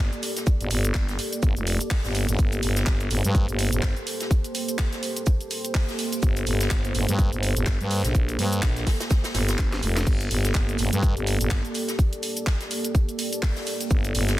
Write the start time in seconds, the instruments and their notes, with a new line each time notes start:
Already playing: fm bass G1, analog synth pad A#3 G4 A4 D5
0.13 closed hi-hat, cabasa
0.23 open hi-hat, shaker
0.36 snare, closed hi-hat, cabasa
0.46 kick, cabasa, shaker
0.60 fm bass G1, closed hi-hat, cabasa
0.71 fm bass G1, open hi-hat, shaker
0.85 closed hi-hat, cabasa
0.94 kick, snare, clap, cabasa, shaker
1.09 snare, closed hi-hat, cabasa
1.19 open hi-hat, shaker
1.33 closed hi-hat, cabasa
1.42 fm bass G1, kick, cabasa, shaker
1.56 fm bass F1, closed hi-hat, cabasa
1.67 open hi-hat, shaker
1.81 closed hi-hat, cabasa
1.91 kick, snare, clap, open hi-hat, cabasa
2.04 fm bass G1, snare, closed hi-hat, cabasa
2.15 open hi-hat, shaker
2.29 fm bass G1, closed hi-hat, cabasa
2.39 fm bass G1, analog synth pad C5, kick, cabasa, shaker
2.52 closed hi-hat, cabasa
2.63 fm bass G1, open hi-hat, shaker
2.76 snare, closed hi-hat, cabasa
2.86 fm bass G1, kick, snare, clap, cabasa, shaker
3.00 closed hi-hat, cabasa
3.10 fm bass G1, open hi-hat, shaker
3.24 fm bass G2, closed hi-hat, cabasa
3.35 kick, cabasa, shaker
3.48 fm bass G1, closed hi-hat, cabasa
3.59 open hi-hat, shaker
3.72 fm bass G1, closed hi-hat, cabasa
3.83 kick, snare, clap, cabasa, shaker
3.96 closed hi-hat, cabasa
4.07 open hi-hat, shaker
4.21 snare, closed hi-hat, cabasa
4.31 kick, cabasa, shaker
4.44 closed hi-hat, cabasa
4.55 open hi-hat, shaker
4.68 closed hi-hat, cabasa
4.79 kick, snare, clap, cabasa, shaker
4.93 snare, closed hi-hat, cabasa
5.03 open hi-hat, shaker
5.17 closed hi-hat, cabasa
5.26 kick, cabasa, shaker
5.41 closed hi-hat, cabasa
5.51 open hi-hat, shaker
5.65 closed hi-hat, cabasa
5.75 kick, snare, clap, open hi-hat, cabasa
5.89 snare, closed hi-hat, cabasa
5.99 open hi-hat, shaker
6.13 closed hi-hat, cabasa
6.22 fm bass G1, kick, cabasa, shaker
6.37 closed hi-hat, cabasa
6.47 fm bass G1, open hi-hat, shaker
6.61 snare, closed hi-hat, cabasa
6.70 fm bass G1, kick, snare, clap, cabasa, shaker
6.85 closed hi-hat, cabasa
6.95 fm bass G1, open hi-hat, shaker
7.08 fm bass G2, closed hi-hat, cabasa
7.19 kick, cabasa, shaker
7.32 fm bass G1, closed hi-hat, cabasa
7.43 open hi-hat, shaker
7.56 fm bass G1, closed hi-hat, cabasa
7.66 kick, snare, clap, cabasa, shaker
7.80 fm bass G2, closed hi-hat, cabasa
7.91 open hi-hat, shaker
8.04 fm bass A#1, snare, closed hi-hat, cabasa
8.15 kick, cabasa, shaker
8.29 closed hi-hat, cabasa
8.39 fm bass G2, open hi-hat, shaker
8.53 closed hi-hat, cabasa
8.62 fm bass A#1, kick, snare, clap, cabasa, shaker
8.77 snare, closed hi-hat, cabasa
8.87 kick, snare, open hi-hat, shaker
9.00 snare, closed hi-hat, cabasa, shaker
9.10 kick, snare, cabasa, shaker
9.24 snare, closed hi-hat, cabasa, shaker
9.34 fm bass G1, snare, open hi-hat, shaker
9.48 snare, closed hi-hat, cabasa, shaker
9.58 kick, snare, clap, cabasa
9.72 snare, closed hi-hat, cabasa
9.83 fm bass F1, open hi-hat, shaker
9.97 snare, closed hi-hat, cabasa
10.06 fm bass G1, analog synth pad D5, kick, crash, cabasa, shaker
10.20 closed hi-hat, cabasa
10.31 fm bass G1, open hi-hat, shaker
10.44 snare, closed hi-hat, cabasa
10.54 fm bass G1, kick, snare, clap, cabasa, shaker
10.69 closed hi-hat, cabasa
10.78 fm bass G1, open hi-hat, shaker
10.92 fm bass G2, closed hi-hat, cabasa
11.03 kick, cabasa, shaker
11.16 fm bass G1, closed hi-hat, cabasa
11.27 open hi-hat, shaker
11.40 fm bass G1, closed hi-hat, cabasa
11.50 kick, snare, clap, cabasa, shaker
11.65 closed hi-hat, cabasa
11.75 open hi-hat, shaker
11.88 snare, closed hi-hat, cabasa
11.99 kick, cabasa, shaker
12.13 closed hi-hat, cabasa
12.23 open hi-hat, shaker
12.37 closed hi-hat, cabasa
12.47 kick, snare, clap, cabasa, shaker
12.61 snare, closed hi-hat, cabasa
12.71 open hi-hat, shaker
12.85 closed hi-hat, cabasa
12.95 kick, cabasa, shaker
13.09 closed hi-hat, cabasa
13.19 open hi-hat, shaker
13.33 closed hi-hat, cabasa
13.43 kick, snare, clap, open hi-hat, cabasa
13.56 snare, closed hi-hat, cabasa
13.67 open hi-hat, shaker
13.81 closed hi-hat, cabasa
13.91 fm bass G1, kick, cabasa, shaker
14.04 closed hi-hat, cabasa
14.15 fm bass G1, open hi-hat, shaker
14.28 snare, closed hi-hat, cabasa